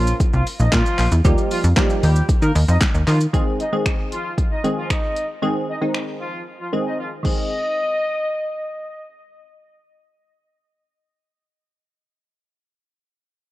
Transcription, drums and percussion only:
0.07 shaker medium
0.20 kick loud
0.20 closed hi-hat medium
0.20 shaker medium
0.33 shaker medium
0.47 open hi-hat medium
0.47 shaker medium
0.60 shaker medium
0.72 kick loud
0.72 snare medium
0.72 clap loud
0.72 closed hi-hat medium
0.72 shaker medium
0.86 shaker soft
0.99 clap medium
0.99 open hi-hat medium
0.99 shaker medium
1.12 shaker medium
1.25 kick loud
1.25 closed hi-hat medium
1.25 shaker medium
1.38 shaker medium
1.51 open hi-hat medium
1.51 shaker medium
1.64 shaker medium
1.76 kick loud
1.76 snare medium
1.76 clap loud
1.76 closed hi-hat medium
1.76 shaker medium
1.90 shaker medium
2.03 open hi-hat medium
2.03 shaker medium
2.16 shaker medium
2.29 kick loud
2.29 closed hi-hat medium
2.29 shaker medium
2.42 shaker medium
2.56 open hi-hat medium
2.56 shaker medium
2.68 shaker medium
2.81 kick loud
2.81 snare medium
2.81 clap loud
2.81 closed hi-hat medium
2.81 shaker medium
2.95 shaker soft
3.08 clap medium
3.08 open hi-hat medium
3.08 shaker medium
3.21 shaker medium
3.34 kick loud
3.34 closed hi-hat medium
3.60 closed hi-hat medium
3.86 finger snap loud
3.86 kick loud
3.86 closed hi-hat medium
4.12 closed hi-hat medium
4.38 kick loud
4.38 closed hi-hat medium
4.64 closed hi-hat medium
4.90 finger snap loud
4.90 kick loud
4.90 closed hi-hat medium
5.16 closed hi-hat medium
5.94 finger snap loud
7.25 kick loud
7.25 crash medium

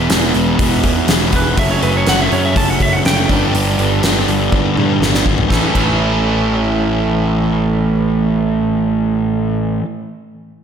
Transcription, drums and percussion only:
0.10 snare loud
0.10 open hi-hat medium
0.34 open hi-hat soft
0.59 kick loud
0.59 open hi-hat medium
0.83 kick medium
0.83 open hi-hat soft
1.08 snare loud
1.08 open hi-hat medium
1.33 kick medium
1.33 open hi-hat soft
1.57 kick medium
1.57 open hi-hat medium
1.83 open hi-hat soft
2.07 snare loud
2.07 open hi-hat medium
2.32 open hi-hat soft
2.56 kick medium
2.56 open hi-hat medium
2.80 kick medium
2.80 open hi-hat soft
3.05 snare loud
3.05 open hi-hat medium
3.29 kick medium
3.29 open hi-hat soft
3.55 open hi-hat medium
3.79 open hi-hat soft
4.03 snare loud
4.03 open hi-hat medium
4.28 open hi-hat soft
4.52 kick loud
4.52 high tom soft
4.77 mid tom medium
5.02 snare medium
5.14 snare medium
5.26 kick medium
5.38 floor tom medium
5.50 kick medium
5.50 snare medium
5.75 kick medium
5.75 crash medium

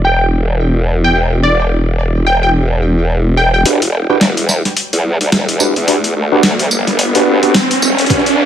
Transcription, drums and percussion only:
0.04 tambourine medium
1.15 tambourine medium
2.26 tambourine medium
3.38 tambourine medium
3.65 closed hi-hat medium
3.82 closed hi-hat medium
4.21 snare loud
4.21 closed hi-hat medium
4.37 closed hi-hat soft
4.49 snare soft
4.49 tambourine medium
4.65 snare soft
4.65 closed hi-hat soft
4.77 closed hi-hat medium
4.93 closed hi-hat medium
5.21 closed hi-hat soft
5.32 snare loud
5.32 closed hi-hat medium
5.49 closed hi-hat medium
5.60 tambourine medium
5.76 closed hi-hat soft
5.88 closed hi-hat medium
6.04 closed hi-hat medium
6.43 snare loud
6.43 closed hi-hat medium
6.59 closed hi-hat medium
6.71 tambourine medium
6.87 snare soft
6.87 closed hi-hat soft
6.99 closed hi-hat medium
7.15 closed hi-hat medium
7.43 closed hi-hat soft
7.54 snare loud
7.54 closed hi-hat medium
7.71 closed hi-hat medium
7.82 tambourine medium
7.98 closed hi-hat soft
8.01 closed hi-hat soft
8.06 kick loud
8.06 closed hi-hat soft
8.10 closed hi-hat medium
8.16 closed hi-hat soft
8.19 closed hi-hat soft
8.26 closed hi-hat medium

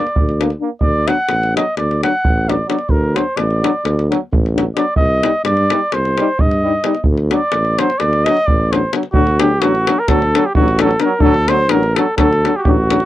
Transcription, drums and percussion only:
0.07 davul high soft
0.16 davul low medium
0.29 davul high soft
0.41 davul high medium
0.50 davul high soft
0.81 davul low medium
1.08 davul high medium
1.29 davul high medium
1.43 davul high soft
1.57 davul high medium
1.77 davul high medium
1.91 davul high soft
2.03 davul high medium
2.25 davul low medium
2.50 davul high medium
2.70 davul high medium
2.79 davul high soft
2.89 davul low medium
3.16 davul high medium
3.37 davul high medium
3.51 davul high soft
3.64 davul high medium
3.85 davul high medium
3.99 davul high soft
4.12 davul high medium
4.33 davul low medium
4.46 davul high soft
4.58 davul high medium
4.77 davul high medium
4.96 davul low medium
5.23 davul high medium
5.45 davul high medium
5.57 davul high soft
5.70 davul high medium
5.92 davul high medium
6.05 davul high soft
6.18 davul high medium
6.39 davul low medium
6.51 davul high soft
6.84 davul high medium
6.95 davul high soft
7.04 davul low medium
7.18 davul high soft
7.31 davul high medium
7.52 davul high medium
7.65 davul high soft
7.79 davul high medium
7.90 davul high soft
8.00 davul high medium
8.13 davul high soft
8.26 davul high medium
8.37 davul high soft
8.48 davul low medium
8.73 davul high medium
8.93 davul high medium
9.03 davul high soft
9.14 davul low medium
9.27 davul high soft
9.40 davul high medium
9.62 davul high medium
9.75 davul high soft
9.87 davul high medium
10.08 davul high medium
10.08 davul low medium
10.22 davul high soft
10.35 davul high medium
10.55 davul low loud
10.68 davul high soft
10.79 davul high medium
10.91 davul high soft
11.00 davul high medium
11.20 davul low loud
11.34 davul high soft
11.48 davul high medium
11.69 davul high medium
11.83 davul high soft
11.96 davul high medium
12.18 davul high medium
12.18 davul low medium
12.33 davul high soft
12.45 davul high medium
12.65 davul low loud
12.90 davul high medium
13.00 davul high soft

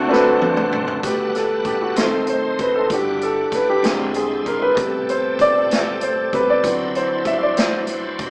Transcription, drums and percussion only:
0.13 snare medium
0.42 high tom medium
0.57 mid tom medium
0.72 mid tom medium
0.87 floor tom medium
1.03 kick medium
1.03 closed hi-hat medium
1.35 snare soft
1.35 closed hi-hat soft
1.65 kick medium
1.65 closed hi-hat soft
1.96 snare medium
1.96 closed hi-hat medium
2.27 closed hi-hat soft
2.59 kick medium
2.59 closed hi-hat soft
2.90 kick medium
2.90 closed hi-hat medium
3.21 closed hi-hat soft
3.52 kick medium
3.52 snare soft
3.52 closed hi-hat soft
3.84 snare medium
3.84 closed hi-hat medium
4.14 closed hi-hat soft
4.46 kick medium
4.46 closed hi-hat soft
4.77 kick loud
4.77 closed hi-hat medium
5.09 closed hi-hat soft
5.39 kick medium
5.39 closed hi-hat soft
5.71 snare medium
5.71 closed hi-hat medium
6.01 closed hi-hat medium
6.33 kick medium
6.33 closed hi-hat soft
6.64 kick medium
6.64 closed hi-hat medium
6.95 closed hi-hat soft
7.25 kick medium
7.25 closed hi-hat soft
7.57 snare medium
7.57 closed hi-hat medium
7.87 closed hi-hat medium
8.19 kick medium
8.19 closed hi-hat soft

